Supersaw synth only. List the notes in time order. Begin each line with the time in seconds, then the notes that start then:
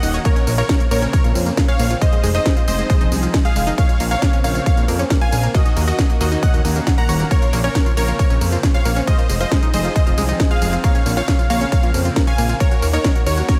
Already playing: D#5 F#5
0.25 A#4 C#5
0.58 A#4 C#5
0.91 A#4 C#5
1.13 A#4 C#5
1.68 C#5 F5
2.01 C5 D#5
2.35 C5 D#5
2.68 C5 D#5
2.90 C5 D#5
3.45 G#4 F5
3.78 C#5 F5
4.11 C#5 F5
4.44 C#5 F5
4.66 C#5 F5
5.21 F5 G#5
5.54 F#4 D#5
5.88 F#4 D#5
6.21 F#4 D#5
6.43 D#5 F#5
6.98 F#5 A#5
7.31 A#4 C#5
7.64 A#4 C#5
7.97 A#4 C#5
8.19 A#4 C#5
8.74 C#5 F5
9.07 C5 D#5
9.41 C5 D#5
9.74 C5 D#5
9.96 C5 D#5
10.51 G#4 F5
10.84 C#5 F5
11.17 C#5 F5
11.50 C#5 F5
11.72 C#5 F5
12.27 F5 G#5
12.60 A#4 C#5
12.93 A#4 C#5
13.27 A#4 C#5
13.49 A#4 C#5